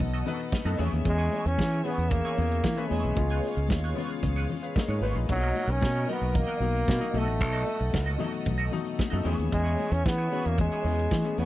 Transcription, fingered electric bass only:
0.00 B1
0.65 F#2
0.79 E2
0.93 D#2
1.06 E2
1.46 E2
1.59 E3
1.98 E2
2.38 E2
2.64 E3
2.91 E2
3.04 B1
3.17 C#2
3.57 C#2
3.70 D#2
4.23 C#2
4.88 G#2
5.01 G#1
5.15 A#1
5.29 B1
5.67 B1
5.83 B2
6.21 B1
6.60 B1
6.88 B2
7.14 B1
7.27 A1
7.41 B1
7.81 B1
7.94 C#2
8.46 B1
9.13 F#2
9.25 E2
9.39 D#2
9.53 E2
9.92 E2
10.06 E3
10.46 E2
10.84 E2
11.11 E3
11.38 E2

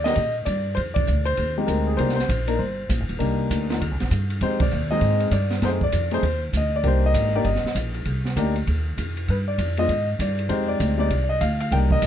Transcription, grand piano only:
0.04 A#3 D4 D#4 G4 D#5
0.45 D5
0.75 C5
0.94 D5
1.25 C5
1.58 G#3 C4 D#4 G4
1.67 A#4
1.87 G#4
1.97 A#3 D4 D#4 G4 C5
2.16 C5
2.47 A#3 D4 D#4 A#4
2.59 C5
3.19 A#3 D4 D#4 G4
3.69 A#3 D4 D#4 F4
4.42 G#3 C4 D#4 G4 C5
4.61 D5
4.91 G#3 C4 D#4 G#4 D#5
5.32 D5
5.62 A3 C4 D#4 G#4 C5
5.84 D5
6.12 A3 C4 D#4 G#4 C5
6.57 D#5
6.76 D5
6.83 A#3 D4 D#4 G4 C5
7.06 D#5
7.35 A#3 D4 D#4 G4 D5
7.44 D#5
8.37 A#3 D4 D#4 G4
9.30 B4
9.48 D5
9.78 G#3 B3 D4 F4 D#5
10.21 D5
10.49 G#3 C4 D#4 G4 C5
10.68 D5
10.98 G#3 C4 D#4 G4 D5
11.24 D5
11.29 D#5
11.41 F5
11.61 F5
11.72 A#3 D4 D#4 G4 G5
11.92 D#5

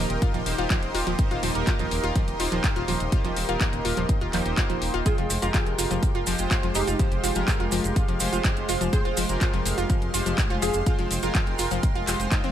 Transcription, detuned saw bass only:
0.10 D#1
0.34 D#1
0.46 D#1
0.58 D#1
0.83 D#1
0.95 D#1
1.07 D#1
1.31 D#1
1.43 D#1
1.55 D#1
1.79 D#1
1.91 D#1
2.04 D#1
2.28 D#1
2.40 D#1
2.52 D#1
2.76 D#1
2.88 D#1
3.00 D#1
3.25 D#1
3.37 D#1
3.49 D#1
3.73 D#1
3.85 D#1
3.97 D#1
4.21 D#1
4.33 D#1
4.46 D#1
4.70 D#1
4.82 D#1
4.94 D#1
5.18 F1
5.30 F1
5.42 F1
5.67 F1
5.78 F1
5.91 F1
6.15 F1
6.27 F1
6.39 F1
6.63 F1
6.75 F1
6.87 F1
7.12 F1
7.24 F1
7.36 F1
7.60 F1
7.72 F1
7.84 F1
8.08 F1
8.20 F1
8.33 F1
8.57 F1
8.69 F1
8.81 F1
9.05 F1
9.17 F1
9.29 F1
9.54 F1
9.66 F1
9.78 F1
10.02 F1
10.14 F1
10.26 F1
10.50 F1
10.62 F1
10.75 F1
10.99 F1
11.11 F1
11.23 F1
11.47 F1
11.59 F1
11.71 F1
11.96 F1
12.07 F1
12.20 F1
12.44 F1

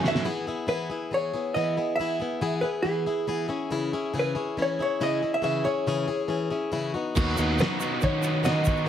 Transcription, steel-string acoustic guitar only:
0.03 F#3 A3 C#4 F#4
0.25 E3 B3 E4 G#4
0.47 B3 E4 G#4
0.67 E3 B3 E4 G#4
0.90 B3 E4 G#4
1.11 E3 B3 E4 G#4
1.33 B3 E4 G#4
1.56 E3 B3 E4 G#4
1.77 B3 E4 G#4
1.99 E3 B3 E4 G#4
2.20 B3 E4 G#4
2.41 E3 B3 E4 G#4
2.62 B3 E4 G#4
2.84 E3 B3 E4 G#4
3.06 B3 E4 G#4
3.27 E3 B3 E4 G#4
3.48 C#4 E4 G#4
3.70 C#3 E3 C#4 E4 G#4
3.93 C#4 E4 G#4
4.13 C#3 E3 C#4 E4 G#4
4.35 C#4 E4 G#4
4.57 E3 C#4 E4 G#4
4.79 C#4 E4 G#4
5.00 C#3 E3 C#4 E4 G#4
5.22 C#4 E4 G#4
5.42 C#3 E3 C#4 E4 G#4
5.64 C#4 E4 G#4
5.87 C#3 E3 C#4 E4 G#4
6.08 C#4 E4 G#4
6.28 E3 C#4 E4 G#4
6.50 C#4 E4 G#4
6.72 C#3 E3 C#4 E4 G#4
6.94 B3 D#4 F#4
7.15 D#3 F#3 B3 D#4 F#4
7.37 B3 D#4 F#4
7.59 D#3 F#3 B3 D#4 F#4
7.79 B3 D#4 F#4
8.01 F#3 B3 D#4 F#4
8.23 B3 D#4 F#4
8.43 D#3 F#3 B3 D#4 F#4
8.66 B3 D#4 F#4
8.86 D#3

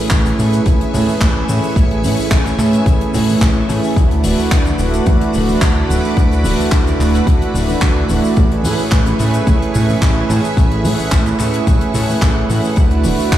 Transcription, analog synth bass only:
0.11 A1
0.39 A2
0.66 A1
0.94 A2
1.21 A1
1.49 A2
1.76 A1
2.04 A2
2.19 A1
2.31 A1
2.59 A2
2.86 A1
3.14 A2
3.41 A1
3.69 A2
3.97 D2
4.24 D1
4.39 D2
4.52 D2
4.79 D1
5.07 D2
5.35 D1
5.62 D2
5.90 D1
6.17 D2
6.45 D1
6.59 D2
6.72 D2
7.00 D1
7.27 D2
7.55 D1
7.82 D2
8.10 D1
8.37 A1
8.64 A2
8.80 A1
8.92 A1
9.20 A2
9.47 A1
9.76 A2
10.02 A1
10.30 A2
10.57 A1
10.84 A2
10.99 A1
11.12 A1
11.40 A2
11.67 A1
11.95 A2
12.22 A1
12.50 A2
12.77 D2
13.05 D1
13.19 D2
13.32 D2

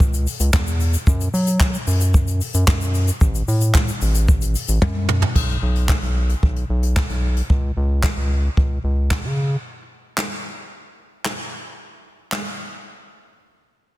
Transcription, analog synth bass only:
Already playing: C#2
0.40 C#2
0.53 E2
1.07 F#2
1.34 F#3
1.87 F#2
2.54 F#2
2.68 F#2
3.21 A1
3.48 A2
4.02 A1
4.68 A1
4.82 F#2
5.36 B1
5.62 B1
6.02 B1
6.43 B1
6.69 B1
7.10 B1
7.50 C#2
7.77 C#2
8.17 C#2
8.57 C#2
8.84 C#2
9.24 C#3

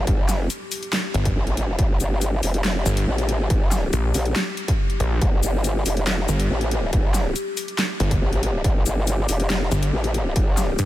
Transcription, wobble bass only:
0.07 G1
1.36 A1
1.79 G1
2.00 G1
2.43 F1
3.07 A1
3.50 G1
4.14 A#1
5.21 G1
5.43 G1
5.86 F1
6.50 A1
6.93 G1
8.22 A1
8.64 G1
8.86 G1
9.29 F1
9.93 A1
10.36 G1

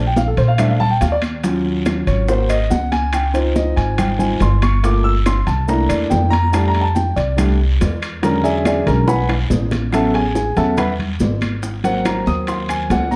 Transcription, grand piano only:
0.07 G5
0.17 F5
0.28 A4
0.38 C5
0.48 F5
0.58 A3 C4 D4 E5
0.70 F5
0.80 A5
0.91 G5
1.01 F5
1.12 D5
1.44 F#3 C#4 F4
2.07 C#5
2.28 A#3 C4 F#4 C5
2.50 D#5
2.70 F#5
2.92 G#5
3.14 G5
3.34 C4 D#4 F4 C5
3.56 D#5
3.76 G#5
3.98 G5
4.19 C4 D#4 F4 G#5
4.42 C6
4.63 C#6
4.83 A3 A#3 F4 D6
5.04 E6
5.26 C6
5.47 A5
5.68 A3 A#3 D4 E4 A#5
5.89 D5
6.10 G5
6.30 A#5
6.52 G3 A3 D4 A5
6.68 A#5
6.81 A5
6.95 G5
7.16 D5
7.37 G3 A3 D4
8.22 D3 F#3 G#3 C#4 A#4 A#5
8.44 G#4 D5 E5 G#5
8.66 G#4 D5 E5 G#5
8.86 D3 F#3 G#3 C#4 A#4 A#5
9.08 B4 F#5 G#5 B5
9.93 F#3 B3 C#4 A4 E5 F#5 A5
10.14 G#4 G#5
10.36 G#4 G#5
10.57 F#3 B3 C#4 A4 E5 F#5 A5
10.78 B4 E5 F#5 B5
11.84 F#3 A#3 C4 F#5
12.06 A#5
12.27 D#6
12.48 C6
12.69 G#5
12.92 F#5
13.11 A#5

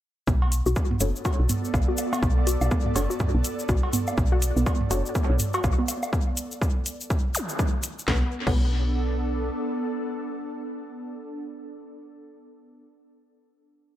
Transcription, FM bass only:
0.27 B1
0.66 B1
1.01 F#1
1.39 B1
1.74 B1
2.23 B1
2.61 B1
2.96 F#1
3.35 B1
3.69 B1
4.18 B1
4.56 B1
4.91 F#1
5.30 B1
5.64 B1
8.08 B1
8.47 B1

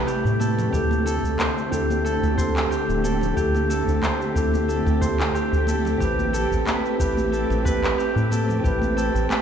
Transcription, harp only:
Already playing: A4 B4
0.07 G4
0.40 A4
0.73 G4
1.06 A4
1.39 C5
1.72 G4
2.05 A4
2.38 C5
2.71 G4
3.04 A4
3.37 G4
3.70 A4
4.03 C5
4.36 G4
4.68 A4
5.01 C5
5.34 G4
5.68 A4
6.00 G4
6.33 A4
6.66 B4
7.00 G4
7.32 A4
7.65 B4
7.98 G4
8.31 A4
8.64 G4
8.97 A4
9.30 B4

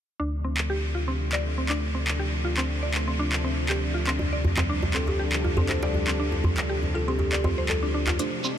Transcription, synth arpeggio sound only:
0.20 D4
0.44 C4
0.70 G4
0.95 F4
1.08 C4
1.33 D5
1.58 C4
1.70 D4
1.95 C4
2.19 G4
2.45 F4
2.58 C4
2.83 D5
3.08 C4
3.19 D4
3.44 C4
3.69 G4
3.94 F4
4.07 C4
4.33 D5
4.58 C4
4.69 D4
4.94 C4
5.19 G4
5.45 F4
5.58 C4
5.83 D5
6.08 C4
6.20 D4
6.45 C4
6.69 G4
6.95 F4
7.08 C4
7.33 D5
7.45 C4
7.58 C5
7.69 A4
7.83 D4
7.94 D4
8.08 F4
8.19 D4
8.44 C4

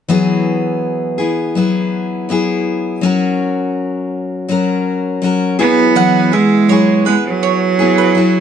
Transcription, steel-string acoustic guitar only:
0.09 E3 F#3 B3 E4 G#4
1.18 B3 E4 G#4
1.55 F#3 B3 E4 G#4
2.29 F#3 B3 E4 G#4
3.01 F#3 C#4 F#4
3.06 A#4
4.49 F#3 C#4 F#4 A#4
5.22 F#3 C#4 F#4 A#4
5.59 E3 F#3 B3 E4 G#4
5.95 E3 F#3 B3 E4 G#4
6.32 B3 E4 G#4
6.69 F#3 B3 E4 G#4
7.05 B3 E4 G#4
7.79 B3 E4 G#4
8.15 F#3 E4 G#4

